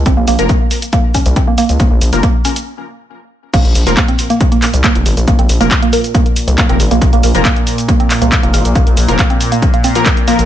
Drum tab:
CC |----------------|----------------|x---------------|----------------|
HH |x-oxx-oxx-oxx-ox|x-oxx-ox--------|xxoxxxoxxxoxxxox|xxoxxxoxxxoxxxox|
SH |x-xxx-xxx-xxx-xx|x-xxx-xx--------|x-xxx-xxx-xxx-xx|x-xxx-xxx-xxx-xx|
CP |----------------|----------------|----x-----x-x---|----x-------x---|
BD |o---o---o-o-o---|o---o-----------|o---o---o---o---|o---o---o---o---|

CC |----------------|----------------|
HH |xxoxxxoxxxoxxxox|xxoxxxoxxxoxxxox|
SH |x-xxx-xxx-xxx-xx|x-xxx-xxx-xxx-xx|
CP |----x-----x-x---|----x-------x---|
BD |o---o---o---o---|o---o---o---o---|